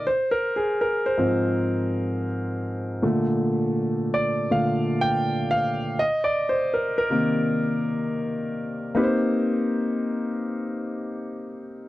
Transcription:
0.07 0.32 C5 medium
0.31 0.56 A#4 medium
0.56 0.81 G#4 medium
0.81 1.06 A#4 medium
1.06 1.76 C5 medium
1.17 2.25 G#2 medium
1.17 2.25 F3 soft
1.17 2.25 C4 medium
3.02 4.50 A#2 medium
3.02 4.49 D3 soft
3.02 4.50 A3 medium
4.14 4.49 D5 medium
4.51 4.85 A#2 soft
4.51 4.84 D3 soft
4.51 4.85 A3 soft
4.51 5.03 F5 medium
5.01 5.52 G5 loud
5.51 6.01 F5 loud
5.99 6.25 D#5 medium
6.24 6.47 D5 medium
6.49 6.75 C5 medium
6.74 6.96 A#4 medium
6.98 7.68 A#4 medium
7.10 8.92 C3 medium
7.10 8.92 D#3 medium
7.10 8.93 A#3 medium
8.95 11.88 A#3 medium
8.95 11.88 C4 medium
8.95 11.88 D#4 medium
8.95 11.88 G4 medium
8.95 9.04 B4 medium
9.04 11.88 C5 medium

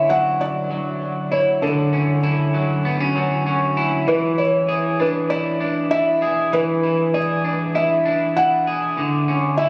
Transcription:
0.00 1.62 D3 medium
0.00 0.40 C#4 soft
0.00 1.31 E4 medium
0.00 0.11 E5 medium
0.09 0.70 F#3 medium
0.09 0.41 F#5 loud
0.41 1.35 D5 loud
0.71 2.54 F#3 medium
1.31 2.23 E4 medium
1.31 1.63 C#5 medium
1.62 4.07 D3 loud
1.62 2.20 A4 medium
1.93 2.85 C#4 medium
2.23 3.77 E4 medium
2.54 3.15 F#3 medium
2.85 3.00 B3 medium
3.00 3.45 C#4 medium
3.16 4.41 F#3 medium
3.46 4.14 C#4 medium
3.77 4.38 E4 medium
4.08 6.52 E3 medium
4.08 4.39 B4 medium
4.38 5.30 E4 medium
4.38 5.01 C#5 medium
4.68 6.21 G#4 medium
5.00 5.60 D4 medium
5.00 5.31 B4 medium
5.30 5.91 E4 medium
5.30 5.93 D5 medium
5.60 7.44 D4 medium
5.91 6.83 E4 medium
5.91 6.54 E5 loud
6.22 7.13 G#4 medium
6.53 8.97 E3 medium
6.53 7.16 B4 loud
6.83 7.75 E4 soft
7.14 8.66 G#4 medium
7.14 7.71 D5 medium
7.44 8.05 D4 medium
7.75 8.36 E4 medium
7.75 8.38 E5 medium
8.06 9.28 D4 medium
8.37 9.59 E4 medium
8.37 8.79 F#5 loud
8.67 9.04 G#4 medium
8.98 9.69 D3 medium
9.28 9.69 C#4 medium
9.57 9.69 E4 medium
9.57 9.69 E5 medium

